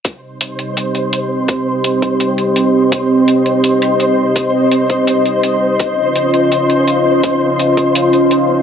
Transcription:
<<
  \new Staff \with { instrumentName = "Synth texture" } { \time 4/4 \key c \phrygian \tempo 4 = 167 c''1~ | c''1~ | c''1~ | c''1~ |
c''1~ | c''1 | }
  \new Staff \with { instrumentName = "Analog synth pad" } { \time 4/4 \key c \phrygian << { ees''1~ | ees''1~ | ees''1~ | ees''1~ |
ees''1~ | ees''1 | } \\ { <c' g'>1~ | <c' g'>1~ | <c' g'>1~ | <c' g'>1 |
<des' f'>1~ | <des' f'>1 | } >> }
  \new DrumStaff \with { instrumentName = "Drums" } \drummode { \time 4/4 <hh bd>4 hh8 hh8 hh8 hh8 hh4 | <hh bd>4 hh8 <hh bd>8 hh8 hh8 hh4 | <hh bd>4 hh8 hh8 hh8 hh8 hh4 | <hh bd>4 hh8 <hh bd>8 hh8 hh8 hh4 |
<hh bd>4 hh8 hh8 hh8 hh8 hh4 | <hh bd>4 hh8 <hh bd>8 hh8 hh8 hh4 | }
>>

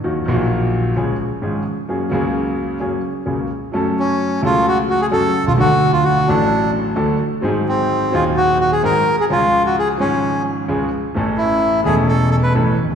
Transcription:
<<
  \new Staff \with { instrumentName = "Bandoneon" } { \time 4/4 \key fis \major \tempo 4 = 130 r1 | r1 | \key cis \phrygian r8 cis'4 eis'8 fis'8 fis'16 gis'16 a'8. eis'16 | fis'8. eis'16 fis'8 d'4 r4. |
r8 bis4 eis'8 fis'8 fis'16 gis'16 ais'8. gis'16 | eis'8. fis'16 gis'8 cis'4 r4. | r8 e'4 gis'8 a'8 a'16 b'8 r8. | }
  \new Staff \with { instrumentName = "Grand piano" } { \clef bass \time 4/4 \key fis \major <dis, dis fis ais fis'>8 <ais,, ais, dis fis ais fis'>4. <cis, cis eis gis cis' gis'>8 r8 <gis,, gis, eis gis cis' gis'>8 r8 | <fis, fis ais cis' gis'>8 <cis, cis fis ais cis' gis'>4. <fis, fis ais cis' gis'>8 r8 <cis, cis fis ais cis' gis'>8 r8 | \key cis \phrygian <fis, fis a cis' a'>4. <cis, cis fis a cis' a'>4. <fis, fis a cis' a'>8 r32 b,,32 bis,,32 cis,32 | <d, d fis a d' a'>4. <a,, a, fis a d' a'>4. <d, d fis a d' a'>8 r8 |
<gis,, gis, fis bis dis' gis'>4. <dis,, dis, fis bis dis' gis'>4. <gis,, gis, fis bis dis' gis'>8 r8 | <cis, cis eis gis cis' gis'>4. <gis,, gis, eis gis cis' gis'>4. <cis, cis eis gis cis' gis'>8 r8 | <a,, a, e a cis' a'>4. <e,, e, e a cis' a'>4. <a,, a, e a cis' a'>8 r32 eis,,32 fis,,32 r32 | }
>>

